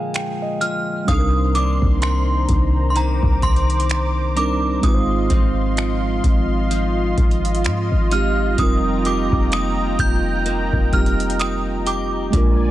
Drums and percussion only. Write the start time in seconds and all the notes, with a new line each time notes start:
0.14 finger snap, closed hi-hat
0.61 closed hi-hat
1.08 kick, closed hi-hat
1.55 closed hi-hat
1.82 kick
2.02 finger snap, closed hi-hat
2.49 kick, closed hi-hat
2.96 closed hi-hat
3.23 kick
3.42 kick, closed hi-hat
3.56 closed hi-hat
3.70 closed hi-hat
3.80 closed hi-hat
3.89 finger snap, closed hi-hat
4.37 closed hi-hat
4.83 kick, closed hi-hat
5.30 kick, closed hi-hat
5.77 finger snap, closed hi-hat
6.24 kick, closed hi-hat
6.71 closed hi-hat
7.18 kick, closed hi-hat
7.31 closed hi-hat
7.45 closed hi-hat
7.55 closed hi-hat
7.64 finger snap, closed hi-hat
8.11 closed hi-hat
8.58 kick, closed hi-hat
9.05 closed hi-hat
9.32 kick
9.52 finger snap, closed hi-hat
9.99 kick, closed hi-hat
10.46 closed hi-hat
10.73 kick
10.93 kick, closed hi-hat
11.06 closed hi-hat
11.20 closed hi-hat
11.30 closed hi-hat
11.39 finger snap, closed hi-hat
11.86 closed hi-hat
12.33 kick, closed hi-hat